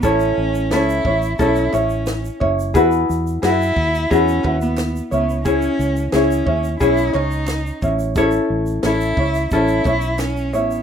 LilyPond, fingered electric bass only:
\new Staff \with { instrumentName = "Fingered electric bass" } { \clef bass \time 4/4 \key a \lydian \tempo 4 = 89 a,,8 a,,8 cis,8 a,,8 b,,8 a,,4 fis,,8 | e,8 e,8 fis,8 dis,8 e,8 dis,4 cis,8~ | cis,8 cis,8 cis,8 dis,8 b,,8 cis,4 a,,8~ | a,,8 a,,8 a,,8 cis,8 a,,8 b,,4 a,,8 | }